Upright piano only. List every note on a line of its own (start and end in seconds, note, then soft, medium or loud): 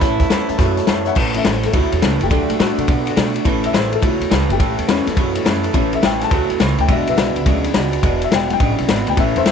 0.01 0.12 C#5 medium
0.01 0.13 E5 medium
0.01 0.13 A5 loud
0.19 0.26 C#5 medium
0.19 0.27 E5 medium
0.19 0.27 A5 medium
0.30 0.41 C#5 medium
0.30 0.42 E5 medium
0.30 0.42 A5 loud
0.48 0.55 C#5 medium
0.48 0.55 E5 medium
0.48 0.55 A5 loud
0.58 0.69 C#5 loud
0.58 0.70 E5 loud
0.58 0.70 A5 loud
0.76 0.83 C#5 medium
0.76 0.83 E5 medium
0.76 0.84 A5 loud
0.86 0.98 C#5 loud
0.86 0.99 E5 medium
0.86 0.99 A5 loud
1.05 1.12 C#5 medium
1.05 1.12 E5 medium
1.05 1.13 F#5 loud
1.35 1.51 E3 medium
1.35 1.52 A3 soft
1.35 1.52 C#4 medium
1.35 1.46 E5 medium
1.47 1.64 C5 medium
1.66 1.75 A4 medium
1.72 1.74 D#4 medium
1.76 2.21 E4 medium
2.02 2.19 E3 medium
2.02 2.19 A3 soft
2.02 2.19 C#4 medium
2.23 2.60 G4 medium
2.31 2.75 F#3 medium
2.31 2.76 A3 medium
2.31 2.60 D4 medium
2.61 2.77 D4 medium
2.61 3.44 F#4 medium
2.78 2.87 F#3 soft
2.78 2.87 A3 soft
2.78 2.87 D4 medium
3.45 3.66 E3 medium
3.45 3.67 A3 medium
3.45 3.67 C#4 medium
3.66 3.75 E5 medium
3.76 3.93 C5 medium
3.94 4.03 A4 medium
4.00 4.02 D#4 medium
4.05 4.49 E4 medium
4.52 4.89 G4 medium
4.91 5.06 C#4 loud
5.06 5.44 E3 medium
5.06 5.44 A3 soft
5.06 5.45 C#4 medium
5.45 5.62 E3 medium
5.45 5.62 A3 soft
5.45 5.62 C#4 medium
5.74 5.95 E3 medium
5.74 5.96 A3 medium
5.74 5.96 C#4 medium
5.95 6.04 E5 medium
6.06 6.22 G5 medium
6.24 6.78 A5 loud
6.81 6.89 G5 medium
6.88 7.33 F#3 medium
6.88 7.33 G#3 medium
6.88 7.34 D4 medium
6.88 7.08 E5 medium
7.09 7.61 B4 medium
7.09 7.64 E5 medium
7.45 7.62 F#3 medium
7.45 7.62 G#3 soft
7.45 7.63 D4 medium
8.24 8.33 E5 medium
8.35 8.51 G5 medium
8.50 8.87 F#3 medium
8.50 8.87 G#3 medium
8.50 8.87 D4 medium
8.50 9.07 G5 loud
9.10 9.18 G5 medium
9.17 9.52 E3 medium
9.17 9.52 A3 medium
9.17 9.52 C#4 medium
9.17 9.36 E5 loud
9.38 9.52 C5 medium
9.38 9.52 E5 loud